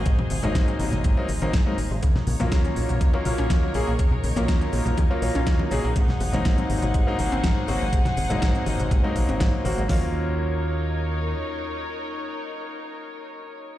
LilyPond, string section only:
\new Staff \with { instrumentName = "String section" } { \time 4/4 \key ees \dorian \tempo 4 = 122 << { <aes' c''>1 | <bes' des''>1~ | <bes' des''>1 | <aes' c'' ges''>1~ |
<aes' c'' ges''>1 | <ees' bes' des''>1~ | <ees' bes' des''>1 | } \\ { ees'1 | ees'1~ | ees'1~ | ees'1~ |
ees'1 | r1 | r1 | } >> }